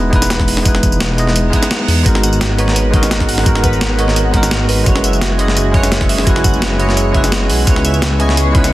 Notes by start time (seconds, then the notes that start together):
Already playing: E1 G#3 B3 D#4 E4 B4 D#5
0.10 G#3 B3 D#4, kick, closed hi-hat
0.14 E4 B4
0.22 snare, tambourine
0.30 snare, closed hi-hat, tambourine
0.40 kick, snare
0.48 open hi-hat
0.57 snare
0.63 E1 G#3 B3 D#4, kick, closed hi-hat, tambourine
0.67 E4 B4
0.75 snare
0.83 kick, closed hi-hat, tambourine
0.92 tambourine
1.00 snare, closed hi-hat, tambourine
1.17 G#3 B3 D#4 E4 D#5, closed hi-hat, tambourine
1.27 snare
1.36 closed hi-hat, tambourine, reverse cymbal
1.50 G#3 B3 D#4, kick, closed hi-hat, tambourine
1.54 E4 B4
1.63 snare, tambourine
1.71 snare, closed hi-hat, tambourine
1.88 E2, open hi-hat
2.03 G#1 G#3 B3 D#4 F#4 A#4 F#5, kick, closed hi-hat, tambourine
2.07 F#4 A#4
2.15 snare
2.23 F#5, closed hi-hat, tambourine
2.33 tambourine
2.41 F#4, snare, closed hi-hat, tambourine
2.57 G#3 B3 D#4 F#4 B4 C#5, closed hi-hat
2.68 snare
2.76 B4, closed hi-hat, tambourine
2.91 G#3 B3 D#4 D#5, kick, closed hi-hat
2.95 F#4 A#4
3.03 snare, tambourine
3.11 F#4, snare, closed hi-hat, tambourine
3.20 kick, snare
3.28 F#5, open hi-hat
3.38 snare
3.43 G#1 G#3 B3 D#4 F#4, kick, closed hi-hat, tambourine
3.48 F#4 A#4
3.55 snare
3.64 B4, kick, closed hi-hat, tambourine
3.73 tambourine
3.81 B4, snare, closed hi-hat, tambourine
3.97 G#3 B3 D#4 F#4 C#5 D#5, closed hi-hat
4.08 snare
4.16 F#4, closed hi-hat, tambourine
4.31 G#1 G#3 B3 D#4 F#5, kick, closed hi-hat
4.35 F#4 A#4
4.43 snare, tambourine
4.51 F#4, snare, closed hi-hat, tambourine
4.69 G#1 B4, open hi-hat
4.84 F#1 G#3 C#4 E4 G#4 C#5, kick, closed hi-hat, tambourine
4.88 F#4 B4
4.96 snare
5.04 E5, closed hi-hat, tambourine
5.13 tambourine
5.21 F#4, snare, closed hi-hat, tambourine
5.38 G#3 C#4 E4 F#4 D#5 F#5, closed hi-hat
5.48 snare
5.57 F#4, closed hi-hat, tambourine
5.71 G#3 C#4 E4 C#5, kick, closed hi-hat
5.76 F#4 B4
5.83 snare, tambourine
5.92 C#5, snare, closed hi-hat, tambourine
6.01 kick, snare
6.09 E5, open hi-hat
6.18 snare
6.24 F#1 G#3 C#4 E4 F#4, kick, closed hi-hat, tambourine
6.28 F#4 B4
6.36 snare
6.44 F#5, kick, closed hi-hat, tambourine
6.54 tambourine
6.62 F#4, snare, closed hi-hat, tambourine
6.78 G#3 C#4 E4 F#4 C#5 D#5, closed hi-hat
6.89 snare
6.97 C#5, closed hi-hat, tambourine
7.12 F#1 G#3 C#4 E4 E5, kick, closed hi-hat
7.16 F#4 B4
7.24 snare, tambourine
7.32 F#4, snare, closed hi-hat, tambourine
7.50 B1 F#5, open hi-hat
7.64 C#2 G#3 B3 C#4 B4 C#5 C#6, kick, closed hi-hat, tambourine
7.69 E4 B4
7.76 snare
7.85 E5, closed hi-hat, tambourine
7.94 tambourine
8.02 E5, snare, closed hi-hat, tambourine
8.18 G#3 B3 C#4 E4 D#5 G#5, closed hi-hat
8.29 snare
8.37 G#4, closed hi-hat, tambourine
8.52 G#3 B3 C#4 B5, kick, closed hi-hat
8.56 E4 B4
8.64 snare, tambourine